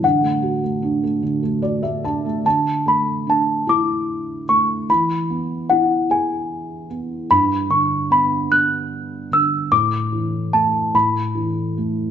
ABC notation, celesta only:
X:1
M:6/8
L:1/8
Q:3/8=50
K:D
V:1 name="Celesta"
f4 z2 | a b a d'2 c' | b2 f ^g2 z | b c' b f'2 e' |
d'2 a b2 z |]